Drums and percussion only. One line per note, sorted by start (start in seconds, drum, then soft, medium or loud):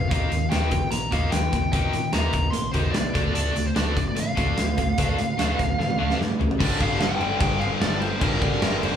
0.11 kick loud
0.11 closed hi-hat medium
0.32 closed hi-hat medium
0.52 snare loud
0.52 closed hi-hat medium
0.71 kick medium
0.71 closed hi-hat medium
0.92 closed hi-hat medium
1.12 kick medium
1.12 closed hi-hat medium
1.32 snare loud
1.32 closed hi-hat medium
1.53 kick medium
1.53 closed hi-hat medium
1.73 kick loud
1.73 closed hi-hat medium
1.93 closed hi-hat medium
2.13 snare loud
2.13 closed hi-hat medium
2.33 kick medium
2.33 closed hi-hat medium
2.53 closed hi-hat medium
2.74 kick medium
2.74 closed hi-hat medium
2.94 snare loud
2.94 closed hi-hat medium
3.15 kick loud
3.15 closed hi-hat medium
3.35 closed hi-hat medium
3.56 closed hi-hat medium
3.76 snare loud
3.76 closed hi-hat medium
3.97 kick medium
3.97 closed hi-hat medium
4.17 closed hi-hat medium
4.37 kick medium
4.37 closed hi-hat medium
4.58 snare loud
4.58 closed hi-hat medium
4.78 kick medium
4.78 closed hi-hat medium
4.98 kick loud
4.98 closed hi-hat medium
5.19 closed hi-hat medium
5.39 snare loud
5.39 closed hi-hat medium
5.59 kick medium
5.59 closed hi-hat medium
5.80 snare medium
5.90 high tom medium
6.10 snare medium
6.21 snare medium
6.41 floor tom medium
6.51 floor tom medium
6.60 kick loud
6.60 crash loud
6.60 crash medium
6.81 kick medium
6.81 crash medium
7.00 snare loud
7.00 crash medium
7.21 crash medium
7.40 kick loud
7.40 crash medium
7.61 crash medium
7.81 snare loud
7.81 crash medium
8.02 crash medium
8.21 kick loud
8.21 crash medium
8.42 kick medium
8.42 crash medium
8.62 snare loud
8.62 crash medium
8.83 crash medium